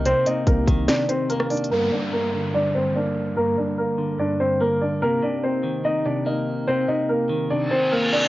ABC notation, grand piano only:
X:1
M:4/4
L:1/8
Q:1/4=145
K:Gm
V:1 name="Grand piano"
[Cc] [Ee] [B,B]2 [Dd] [Cc] [B,B] [Dd] | [B,B] [Dd] [B,B]2 [Dd] [Cc] [Dd]2 | [B,B] [Dd] [B,B]2 [Dd] [Cc] [B,B] [Dd] | [B,B] [Dd] [Cc]2 [Ee] [Dd] [Ee]2 |
[Cc] [Ee] [B,B]2 [Dd] [Cc] [B,B] [Dd] |]